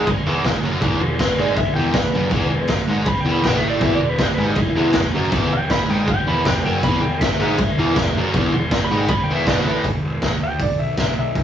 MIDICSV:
0, 0, Header, 1, 7, 480
1, 0, Start_track
1, 0, Tempo, 376176
1, 1054, Time_signature, 4, 2, 24, 8
1, 14591, End_track
2, 0, Start_track
2, 0, Title_t, "Electric slide guitar"
2, 0, Program_c, 0, 29
2, 1286, Note_on_c, 0, 67, 94
2, 1522, Note_off_c, 0, 67, 0
2, 1530, Note_on_c, 0, 71, 93
2, 1763, Note_off_c, 0, 71, 0
2, 1785, Note_on_c, 0, 74, 88
2, 2001, Note_off_c, 0, 74, 0
2, 2006, Note_on_c, 0, 76, 93
2, 2235, Note_off_c, 0, 76, 0
2, 2240, Note_on_c, 0, 79, 89
2, 2477, Note_off_c, 0, 79, 0
2, 2491, Note_on_c, 0, 71, 98
2, 3419, Note_off_c, 0, 71, 0
2, 3930, Note_on_c, 0, 83, 105
2, 4083, Note_off_c, 0, 83, 0
2, 4090, Note_on_c, 0, 79, 105
2, 4236, Note_on_c, 0, 83, 95
2, 4243, Note_off_c, 0, 79, 0
2, 4396, Note_off_c, 0, 83, 0
2, 4406, Note_on_c, 0, 79, 106
2, 4559, Note_on_c, 0, 76, 95
2, 4561, Note_off_c, 0, 79, 0
2, 4713, Note_off_c, 0, 76, 0
2, 4719, Note_on_c, 0, 74, 89
2, 4876, Note_on_c, 0, 76, 92
2, 4878, Note_off_c, 0, 74, 0
2, 5036, Note_off_c, 0, 76, 0
2, 5043, Note_on_c, 0, 74, 99
2, 5200, Note_off_c, 0, 74, 0
2, 5224, Note_on_c, 0, 71, 90
2, 5371, Note_off_c, 0, 71, 0
2, 5382, Note_on_c, 0, 67, 94
2, 5530, Note_off_c, 0, 67, 0
2, 5540, Note_on_c, 0, 71, 90
2, 5676, Note_on_c, 0, 67, 92
2, 5689, Note_off_c, 0, 71, 0
2, 5833, Note_on_c, 0, 64, 87
2, 5837, Note_off_c, 0, 67, 0
2, 5977, Note_off_c, 0, 64, 0
2, 5992, Note_on_c, 0, 64, 104
2, 6466, Note_off_c, 0, 64, 0
2, 7054, Note_on_c, 0, 79, 115
2, 7285, Note_off_c, 0, 79, 0
2, 7289, Note_on_c, 0, 83, 96
2, 7523, Note_off_c, 0, 83, 0
2, 7532, Note_on_c, 0, 79, 93
2, 7765, Note_off_c, 0, 79, 0
2, 7788, Note_on_c, 0, 79, 107
2, 8009, Note_on_c, 0, 83, 95
2, 8014, Note_off_c, 0, 79, 0
2, 8243, Note_on_c, 0, 79, 104
2, 8244, Note_off_c, 0, 83, 0
2, 8468, Note_off_c, 0, 79, 0
2, 8483, Note_on_c, 0, 79, 98
2, 8721, Note_off_c, 0, 79, 0
2, 8723, Note_on_c, 0, 83, 94
2, 8956, Note_on_c, 0, 79, 99
2, 8962, Note_off_c, 0, 83, 0
2, 9197, Note_on_c, 0, 76, 116
2, 9198, Note_off_c, 0, 79, 0
2, 10604, Note_off_c, 0, 76, 0
2, 11288, Note_on_c, 0, 83, 103
2, 11447, Note_on_c, 0, 79, 92
2, 11448, Note_off_c, 0, 83, 0
2, 11594, Note_on_c, 0, 83, 107
2, 11607, Note_off_c, 0, 79, 0
2, 11761, Note_off_c, 0, 83, 0
2, 11787, Note_on_c, 0, 79, 100
2, 11933, Note_on_c, 0, 76, 97
2, 11938, Note_off_c, 0, 79, 0
2, 12090, Note_off_c, 0, 76, 0
2, 12095, Note_on_c, 0, 74, 111
2, 12250, Note_on_c, 0, 71, 104
2, 12252, Note_off_c, 0, 74, 0
2, 12564, Note_off_c, 0, 71, 0
2, 13313, Note_on_c, 0, 79, 92
2, 13538, Note_off_c, 0, 79, 0
2, 13558, Note_on_c, 0, 74, 79
2, 13774, Note_on_c, 0, 76, 78
2, 13781, Note_off_c, 0, 74, 0
2, 14008, Note_off_c, 0, 76, 0
2, 14024, Note_on_c, 0, 76, 86
2, 14254, Note_off_c, 0, 76, 0
2, 14277, Note_on_c, 0, 76, 75
2, 14591, Note_off_c, 0, 76, 0
2, 14591, End_track
3, 0, Start_track
3, 0, Title_t, "Distorted electric guitar"
3, 0, Program_c, 1, 30
3, 328, Note_on_c, 1, 40, 90
3, 338, Note_on_c, 1, 52, 97
3, 565, Note_off_c, 1, 40, 0
3, 570, Note_off_c, 1, 52, 0
3, 586, Note_on_c, 1, 40, 67
3, 772, Note_off_c, 1, 40, 0
3, 811, Note_on_c, 1, 42, 88
3, 826, Note_on_c, 1, 54, 111
3, 1036, Note_off_c, 1, 42, 0
3, 1041, Note_on_c, 1, 40, 92
3, 1048, Note_off_c, 1, 54, 0
3, 1053, Note_on_c, 1, 52, 101
3, 1272, Note_off_c, 1, 40, 0
3, 1286, Note_off_c, 1, 52, 0
3, 1287, Note_on_c, 1, 40, 65
3, 1482, Note_off_c, 1, 40, 0
3, 1762, Note_on_c, 1, 44, 95
3, 1781, Note_on_c, 1, 56, 94
3, 1999, Note_off_c, 1, 44, 0
3, 2008, Note_off_c, 1, 56, 0
3, 2238, Note_on_c, 1, 40, 92
3, 2254, Note_on_c, 1, 52, 96
3, 2476, Note_off_c, 1, 40, 0
3, 2484, Note_off_c, 1, 52, 0
3, 2495, Note_on_c, 1, 40, 70
3, 2684, Note_off_c, 1, 40, 0
3, 2731, Note_on_c, 1, 42, 99
3, 2739, Note_on_c, 1, 54, 114
3, 2961, Note_off_c, 1, 42, 0
3, 2966, Note_off_c, 1, 54, 0
3, 2966, Note_on_c, 1, 40, 90
3, 2980, Note_on_c, 1, 52, 113
3, 3189, Note_off_c, 1, 40, 0
3, 3205, Note_on_c, 1, 40, 69
3, 3206, Note_off_c, 1, 52, 0
3, 3398, Note_off_c, 1, 40, 0
3, 3672, Note_on_c, 1, 44, 86
3, 3684, Note_on_c, 1, 56, 100
3, 3904, Note_off_c, 1, 44, 0
3, 3918, Note_off_c, 1, 56, 0
3, 4144, Note_on_c, 1, 40, 84
3, 4157, Note_on_c, 1, 52, 104
3, 4362, Note_on_c, 1, 47, 93
3, 4385, Note_on_c, 1, 59, 104
3, 4388, Note_off_c, 1, 40, 0
3, 4394, Note_off_c, 1, 52, 0
3, 4595, Note_off_c, 1, 47, 0
3, 4600, Note_on_c, 1, 45, 88
3, 4606, Note_off_c, 1, 59, 0
3, 4612, Note_on_c, 1, 57, 111
3, 4848, Note_on_c, 1, 40, 98
3, 4856, Note_off_c, 1, 45, 0
3, 4859, Note_on_c, 1, 52, 106
3, 4862, Note_off_c, 1, 57, 0
3, 5094, Note_off_c, 1, 40, 0
3, 5106, Note_off_c, 1, 52, 0
3, 5109, Note_on_c, 1, 40, 69
3, 5310, Note_off_c, 1, 40, 0
3, 5584, Note_on_c, 1, 44, 90
3, 5597, Note_on_c, 1, 56, 93
3, 5828, Note_off_c, 1, 44, 0
3, 5835, Note_off_c, 1, 56, 0
3, 6065, Note_on_c, 1, 40, 91
3, 6077, Note_on_c, 1, 52, 107
3, 6289, Note_off_c, 1, 40, 0
3, 6304, Note_on_c, 1, 40, 72
3, 6315, Note_off_c, 1, 52, 0
3, 6508, Note_off_c, 1, 40, 0
3, 6549, Note_on_c, 1, 42, 92
3, 6567, Note_on_c, 1, 54, 106
3, 6786, Note_off_c, 1, 42, 0
3, 6792, Note_on_c, 1, 40, 96
3, 6800, Note_off_c, 1, 54, 0
3, 6805, Note_on_c, 1, 52, 114
3, 7033, Note_off_c, 1, 40, 0
3, 7040, Note_off_c, 1, 52, 0
3, 7051, Note_on_c, 1, 40, 69
3, 7243, Note_off_c, 1, 40, 0
3, 7511, Note_on_c, 1, 44, 96
3, 7523, Note_on_c, 1, 56, 90
3, 7747, Note_off_c, 1, 44, 0
3, 7760, Note_off_c, 1, 56, 0
3, 7997, Note_on_c, 1, 40, 97
3, 8003, Note_on_c, 1, 52, 109
3, 8227, Note_off_c, 1, 40, 0
3, 8241, Note_off_c, 1, 52, 0
3, 8242, Note_on_c, 1, 40, 75
3, 8440, Note_off_c, 1, 40, 0
3, 8472, Note_on_c, 1, 42, 100
3, 8488, Note_on_c, 1, 54, 103
3, 8716, Note_off_c, 1, 42, 0
3, 8724, Note_off_c, 1, 54, 0
3, 8731, Note_on_c, 1, 40, 99
3, 8740, Note_on_c, 1, 52, 107
3, 8937, Note_off_c, 1, 40, 0
3, 8952, Note_on_c, 1, 40, 74
3, 8970, Note_off_c, 1, 52, 0
3, 9155, Note_off_c, 1, 40, 0
3, 9437, Note_on_c, 1, 44, 91
3, 9440, Note_on_c, 1, 56, 95
3, 9671, Note_off_c, 1, 44, 0
3, 9681, Note_off_c, 1, 56, 0
3, 9925, Note_on_c, 1, 40, 86
3, 9935, Note_on_c, 1, 52, 109
3, 10156, Note_off_c, 1, 40, 0
3, 10169, Note_off_c, 1, 52, 0
3, 10172, Note_on_c, 1, 40, 77
3, 10366, Note_off_c, 1, 40, 0
3, 10419, Note_on_c, 1, 42, 88
3, 10436, Note_on_c, 1, 54, 106
3, 10645, Note_off_c, 1, 42, 0
3, 10650, Note_on_c, 1, 40, 105
3, 10658, Note_off_c, 1, 54, 0
3, 10663, Note_on_c, 1, 52, 105
3, 10877, Note_off_c, 1, 40, 0
3, 10893, Note_off_c, 1, 52, 0
3, 10893, Note_on_c, 1, 40, 69
3, 11087, Note_off_c, 1, 40, 0
3, 11365, Note_on_c, 1, 44, 92
3, 11381, Note_on_c, 1, 56, 103
3, 11604, Note_off_c, 1, 44, 0
3, 11612, Note_off_c, 1, 56, 0
3, 11874, Note_on_c, 1, 40, 94
3, 11880, Note_on_c, 1, 52, 107
3, 12099, Note_off_c, 1, 40, 0
3, 12102, Note_off_c, 1, 52, 0
3, 12112, Note_on_c, 1, 47, 98
3, 12121, Note_on_c, 1, 59, 108
3, 12328, Note_off_c, 1, 47, 0
3, 12333, Note_on_c, 1, 45, 94
3, 12341, Note_off_c, 1, 59, 0
3, 12346, Note_on_c, 1, 57, 109
3, 12568, Note_off_c, 1, 45, 0
3, 12575, Note_off_c, 1, 57, 0
3, 14591, End_track
4, 0, Start_track
4, 0, Title_t, "Picked electric bass"
4, 0, Program_c, 2, 34
4, 332, Note_on_c, 2, 28, 92
4, 557, Note_off_c, 2, 28, 0
4, 572, Note_on_c, 2, 28, 78
4, 796, Note_off_c, 2, 28, 0
4, 806, Note_on_c, 2, 30, 91
4, 1033, Note_off_c, 2, 30, 0
4, 1046, Note_on_c, 2, 28, 105
4, 1272, Note_off_c, 2, 28, 0
4, 1283, Note_on_c, 2, 28, 82
4, 1510, Note_off_c, 2, 28, 0
4, 1768, Note_on_c, 2, 32, 92
4, 1992, Note_off_c, 2, 32, 0
4, 2249, Note_on_c, 2, 28, 97
4, 2472, Note_off_c, 2, 28, 0
4, 2478, Note_on_c, 2, 28, 77
4, 2706, Note_off_c, 2, 28, 0
4, 2726, Note_on_c, 2, 30, 98
4, 2950, Note_off_c, 2, 30, 0
4, 2958, Note_on_c, 2, 28, 98
4, 3185, Note_off_c, 2, 28, 0
4, 3206, Note_on_c, 2, 28, 75
4, 3430, Note_off_c, 2, 28, 0
4, 3677, Note_on_c, 2, 32, 95
4, 3905, Note_off_c, 2, 32, 0
4, 4151, Note_on_c, 2, 28, 94
4, 4378, Note_off_c, 2, 28, 0
4, 4386, Note_on_c, 2, 35, 87
4, 4618, Note_off_c, 2, 35, 0
4, 4648, Note_on_c, 2, 33, 86
4, 4857, Note_off_c, 2, 33, 0
4, 4864, Note_on_c, 2, 28, 99
4, 5098, Note_off_c, 2, 28, 0
4, 5110, Note_on_c, 2, 28, 75
4, 5341, Note_off_c, 2, 28, 0
4, 5586, Note_on_c, 2, 32, 99
4, 5819, Note_off_c, 2, 32, 0
4, 6067, Note_on_c, 2, 28, 100
4, 6293, Note_off_c, 2, 28, 0
4, 6301, Note_on_c, 2, 28, 74
4, 6537, Note_off_c, 2, 28, 0
4, 6563, Note_on_c, 2, 30, 92
4, 6781, Note_off_c, 2, 30, 0
4, 6788, Note_on_c, 2, 28, 97
4, 7022, Note_off_c, 2, 28, 0
4, 7044, Note_on_c, 2, 28, 78
4, 7270, Note_off_c, 2, 28, 0
4, 7532, Note_on_c, 2, 32, 97
4, 7749, Note_off_c, 2, 32, 0
4, 8016, Note_on_c, 2, 28, 95
4, 8228, Note_off_c, 2, 28, 0
4, 8236, Note_on_c, 2, 28, 80
4, 8467, Note_off_c, 2, 28, 0
4, 8497, Note_on_c, 2, 30, 90
4, 8713, Note_off_c, 2, 30, 0
4, 8721, Note_on_c, 2, 28, 102
4, 8950, Note_off_c, 2, 28, 0
4, 8974, Note_on_c, 2, 28, 78
4, 9198, Note_off_c, 2, 28, 0
4, 9442, Note_on_c, 2, 32, 99
4, 9672, Note_off_c, 2, 32, 0
4, 9913, Note_on_c, 2, 28, 98
4, 10147, Note_off_c, 2, 28, 0
4, 10163, Note_on_c, 2, 28, 83
4, 10393, Note_off_c, 2, 28, 0
4, 10399, Note_on_c, 2, 30, 93
4, 10631, Note_off_c, 2, 30, 0
4, 10645, Note_on_c, 2, 28, 104
4, 10874, Note_off_c, 2, 28, 0
4, 10889, Note_on_c, 2, 28, 82
4, 11116, Note_off_c, 2, 28, 0
4, 11367, Note_on_c, 2, 32, 106
4, 11595, Note_off_c, 2, 32, 0
4, 11855, Note_on_c, 2, 28, 101
4, 12079, Note_off_c, 2, 28, 0
4, 12086, Note_on_c, 2, 35, 93
4, 12315, Note_off_c, 2, 35, 0
4, 12329, Note_on_c, 2, 33, 102
4, 12557, Note_off_c, 2, 33, 0
4, 12567, Note_on_c, 2, 28, 86
4, 12784, Note_off_c, 2, 28, 0
4, 12813, Note_on_c, 2, 28, 81
4, 13028, Note_off_c, 2, 28, 0
4, 13039, Note_on_c, 2, 28, 83
4, 13260, Note_off_c, 2, 28, 0
4, 13288, Note_on_c, 2, 38, 84
4, 13505, Note_off_c, 2, 38, 0
4, 13520, Note_on_c, 2, 28, 77
4, 13740, Note_off_c, 2, 28, 0
4, 13769, Note_on_c, 2, 35, 83
4, 13985, Note_off_c, 2, 35, 0
4, 14004, Note_on_c, 2, 35, 75
4, 14222, Note_off_c, 2, 35, 0
4, 14256, Note_on_c, 2, 35, 83
4, 14469, Note_off_c, 2, 35, 0
4, 14487, Note_on_c, 2, 28, 85
4, 14591, Note_off_c, 2, 28, 0
4, 14591, End_track
5, 0, Start_track
5, 0, Title_t, "Muted distorted electric guitar strokes"
5, 85, Note_on_c, 9, 29, 59
5, 213, Note_off_c, 9, 29, 0
5, 2014, Note_on_c, 9, 29, 60
5, 2141, Note_off_c, 9, 29, 0
5, 3909, Note_on_c, 9, 29, 58
5, 4036, Note_off_c, 9, 29, 0
5, 5836, Note_on_c, 9, 29, 59
5, 5964, Note_off_c, 9, 29, 0
5, 7752, Note_on_c, 9, 29, 61
5, 7879, Note_off_c, 9, 29, 0
5, 9676, Note_on_c, 9, 29, 65
5, 9803, Note_off_c, 9, 29, 0
5, 11622, Note_on_c, 9, 29, 68
5, 11750, Note_off_c, 9, 29, 0
5, 14591, End_track
6, 0, Start_track
6, 0, Title_t, "Muted picked electric bass strokes"
6, 94, Note_on_c, 9, 29, 38
6, 221, Note_off_c, 9, 29, 0
6, 2004, Note_on_c, 9, 29, 41
6, 2131, Note_off_c, 9, 29, 0
6, 3910, Note_on_c, 9, 29, 39
6, 4038, Note_off_c, 9, 29, 0
6, 7757, Note_on_c, 9, 29, 38
6, 7884, Note_off_c, 9, 29, 0
6, 9688, Note_on_c, 9, 29, 43
6, 9816, Note_off_c, 9, 29, 0
6, 11603, Note_on_c, 9, 29, 42
6, 11731, Note_off_c, 9, 29, 0
6, 14591, End_track
7, 0, Start_track
7, 0, Title_t, "Drums"
7, 89, Note_on_c, 9, 49, 58
7, 92, Note_on_c, 9, 36, 108
7, 217, Note_off_c, 9, 49, 0
7, 220, Note_off_c, 9, 36, 0
7, 569, Note_on_c, 9, 36, 105
7, 575, Note_on_c, 9, 49, 60
7, 587, Note_on_c, 9, 38, 117
7, 697, Note_off_c, 9, 36, 0
7, 703, Note_off_c, 9, 49, 0
7, 714, Note_off_c, 9, 38, 0
7, 1044, Note_on_c, 9, 36, 104
7, 1044, Note_on_c, 9, 49, 62
7, 1171, Note_off_c, 9, 36, 0
7, 1172, Note_off_c, 9, 49, 0
7, 1521, Note_on_c, 9, 49, 68
7, 1523, Note_on_c, 9, 36, 113
7, 1532, Note_on_c, 9, 38, 109
7, 1648, Note_off_c, 9, 49, 0
7, 1650, Note_off_c, 9, 36, 0
7, 1660, Note_off_c, 9, 38, 0
7, 1993, Note_on_c, 9, 49, 57
7, 1999, Note_on_c, 9, 36, 107
7, 2120, Note_off_c, 9, 49, 0
7, 2127, Note_off_c, 9, 36, 0
7, 2467, Note_on_c, 9, 49, 58
7, 2472, Note_on_c, 9, 36, 108
7, 2479, Note_on_c, 9, 38, 114
7, 2595, Note_off_c, 9, 49, 0
7, 2600, Note_off_c, 9, 36, 0
7, 2606, Note_off_c, 9, 38, 0
7, 2943, Note_on_c, 9, 49, 59
7, 2950, Note_on_c, 9, 36, 109
7, 3070, Note_off_c, 9, 49, 0
7, 3078, Note_off_c, 9, 36, 0
7, 3414, Note_on_c, 9, 49, 60
7, 3425, Note_on_c, 9, 38, 114
7, 3427, Note_on_c, 9, 36, 119
7, 3542, Note_off_c, 9, 49, 0
7, 3553, Note_off_c, 9, 38, 0
7, 3555, Note_off_c, 9, 36, 0
7, 3901, Note_on_c, 9, 49, 57
7, 3909, Note_on_c, 9, 36, 118
7, 4028, Note_off_c, 9, 49, 0
7, 4036, Note_off_c, 9, 36, 0
7, 4387, Note_on_c, 9, 36, 109
7, 4392, Note_on_c, 9, 49, 62
7, 4403, Note_on_c, 9, 38, 108
7, 4515, Note_off_c, 9, 36, 0
7, 4519, Note_off_c, 9, 49, 0
7, 4531, Note_off_c, 9, 38, 0
7, 4859, Note_on_c, 9, 49, 64
7, 4863, Note_on_c, 9, 36, 115
7, 4987, Note_off_c, 9, 49, 0
7, 4990, Note_off_c, 9, 36, 0
7, 5337, Note_on_c, 9, 49, 64
7, 5343, Note_on_c, 9, 36, 114
7, 5348, Note_on_c, 9, 38, 108
7, 5464, Note_off_c, 9, 49, 0
7, 5470, Note_off_c, 9, 36, 0
7, 5476, Note_off_c, 9, 38, 0
7, 5809, Note_on_c, 9, 49, 64
7, 5823, Note_on_c, 9, 36, 107
7, 5937, Note_off_c, 9, 49, 0
7, 5950, Note_off_c, 9, 36, 0
7, 6284, Note_on_c, 9, 49, 61
7, 6296, Note_on_c, 9, 38, 116
7, 6303, Note_on_c, 9, 36, 112
7, 6412, Note_off_c, 9, 49, 0
7, 6424, Note_off_c, 9, 38, 0
7, 6431, Note_off_c, 9, 36, 0
7, 6788, Note_on_c, 9, 36, 116
7, 6789, Note_on_c, 9, 49, 55
7, 6916, Note_off_c, 9, 36, 0
7, 6917, Note_off_c, 9, 49, 0
7, 7272, Note_on_c, 9, 49, 60
7, 7273, Note_on_c, 9, 36, 119
7, 7283, Note_on_c, 9, 38, 118
7, 7399, Note_off_c, 9, 49, 0
7, 7400, Note_off_c, 9, 36, 0
7, 7411, Note_off_c, 9, 38, 0
7, 7750, Note_on_c, 9, 49, 58
7, 7754, Note_on_c, 9, 36, 110
7, 7878, Note_off_c, 9, 49, 0
7, 7882, Note_off_c, 9, 36, 0
7, 8232, Note_on_c, 9, 49, 63
7, 8234, Note_on_c, 9, 36, 110
7, 8244, Note_on_c, 9, 38, 111
7, 8360, Note_off_c, 9, 49, 0
7, 8362, Note_off_c, 9, 36, 0
7, 8371, Note_off_c, 9, 38, 0
7, 8718, Note_on_c, 9, 36, 112
7, 8723, Note_on_c, 9, 49, 60
7, 8845, Note_off_c, 9, 36, 0
7, 8851, Note_off_c, 9, 49, 0
7, 9201, Note_on_c, 9, 36, 125
7, 9204, Note_on_c, 9, 49, 68
7, 9215, Note_on_c, 9, 38, 121
7, 9328, Note_off_c, 9, 36, 0
7, 9332, Note_off_c, 9, 49, 0
7, 9343, Note_off_c, 9, 38, 0
7, 9672, Note_on_c, 9, 49, 63
7, 9680, Note_on_c, 9, 36, 115
7, 9799, Note_off_c, 9, 49, 0
7, 9808, Note_off_c, 9, 36, 0
7, 10158, Note_on_c, 9, 49, 67
7, 10160, Note_on_c, 9, 36, 115
7, 10169, Note_on_c, 9, 38, 116
7, 10285, Note_off_c, 9, 49, 0
7, 10287, Note_off_c, 9, 36, 0
7, 10297, Note_off_c, 9, 38, 0
7, 10639, Note_on_c, 9, 49, 61
7, 10643, Note_on_c, 9, 36, 108
7, 10767, Note_off_c, 9, 49, 0
7, 10771, Note_off_c, 9, 36, 0
7, 11117, Note_on_c, 9, 49, 63
7, 11119, Note_on_c, 9, 36, 116
7, 11129, Note_on_c, 9, 38, 125
7, 11245, Note_off_c, 9, 49, 0
7, 11247, Note_off_c, 9, 36, 0
7, 11256, Note_off_c, 9, 38, 0
7, 11588, Note_on_c, 9, 49, 57
7, 11600, Note_on_c, 9, 36, 116
7, 11716, Note_off_c, 9, 49, 0
7, 11727, Note_off_c, 9, 36, 0
7, 12079, Note_on_c, 9, 49, 62
7, 12084, Note_on_c, 9, 36, 111
7, 12090, Note_on_c, 9, 38, 118
7, 12206, Note_off_c, 9, 49, 0
7, 12211, Note_off_c, 9, 36, 0
7, 12218, Note_off_c, 9, 38, 0
7, 12562, Note_on_c, 9, 36, 99
7, 12567, Note_on_c, 9, 46, 48
7, 12689, Note_off_c, 9, 36, 0
7, 12695, Note_off_c, 9, 46, 0
7, 13037, Note_on_c, 9, 46, 51
7, 13041, Note_on_c, 9, 36, 105
7, 13048, Note_on_c, 9, 38, 106
7, 13164, Note_off_c, 9, 46, 0
7, 13168, Note_off_c, 9, 36, 0
7, 13176, Note_off_c, 9, 38, 0
7, 13515, Note_on_c, 9, 46, 50
7, 13520, Note_on_c, 9, 36, 99
7, 13642, Note_off_c, 9, 46, 0
7, 13647, Note_off_c, 9, 36, 0
7, 13999, Note_on_c, 9, 46, 49
7, 14006, Note_on_c, 9, 36, 98
7, 14010, Note_on_c, 9, 38, 101
7, 14126, Note_off_c, 9, 46, 0
7, 14133, Note_off_c, 9, 36, 0
7, 14138, Note_off_c, 9, 38, 0
7, 14487, Note_on_c, 9, 36, 105
7, 14488, Note_on_c, 9, 46, 46
7, 14591, Note_off_c, 9, 36, 0
7, 14591, Note_off_c, 9, 46, 0
7, 14591, End_track
0, 0, End_of_file